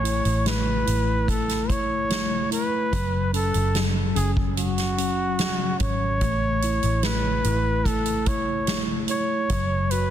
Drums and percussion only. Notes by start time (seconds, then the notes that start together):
0.05 closed hi-hat
0.25 closed hi-hat
0.46 snare, closed hi-hat
0.87 closed hi-hat
1.28 kick, closed hi-hat
1.49 snare, closed hi-hat
1.70 kick, closed hi-hat
2.10 snare, closed hi-hat
2.52 closed hi-hat
2.93 kick, closed hi-hat
3.34 closed hi-hat
3.54 closed hi-hat
3.75 snare, closed hi-hat
4.16 closed hi-hat
4.37 kick
4.57 closed hi-hat
4.78 snare, closed hi-hat
4.98 closed hi-hat
5.39 snare, closed hi-hat
5.80 kick, closed hi-hat
6.21 kick, closed hi-hat
6.62 closed hi-hat
6.83 closed hi-hat
7.03 snare, closed hi-hat
7.44 closed hi-hat
7.85 kick, closed hi-hat
8.06 closed hi-hat
8.26 kick, closed hi-hat
8.67 snare, closed hi-hat
9.08 closed hi-hat
9.50 kick, closed hi-hat
9.91 closed hi-hat